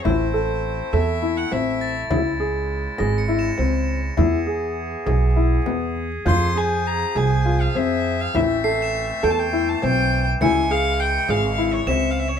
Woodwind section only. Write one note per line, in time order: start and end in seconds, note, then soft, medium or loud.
0.00 2.07 C4 medium
0.05 2.09 A3 medium
0.05 4.13 E4 medium
2.11 4.15 C#3 medium
2.11 4.15 G#3 medium
4.17 6.08 E3 medium
4.17 6.08 B3 medium
4.17 8.30 G#4 medium
6.25 8.32 F3 medium
6.25 10.37 C4 medium
8.35 12.40 E3 medium
8.35 10.39 A3 medium
10.41 12.40 C#3 medium
10.41 12.40 G#3 medium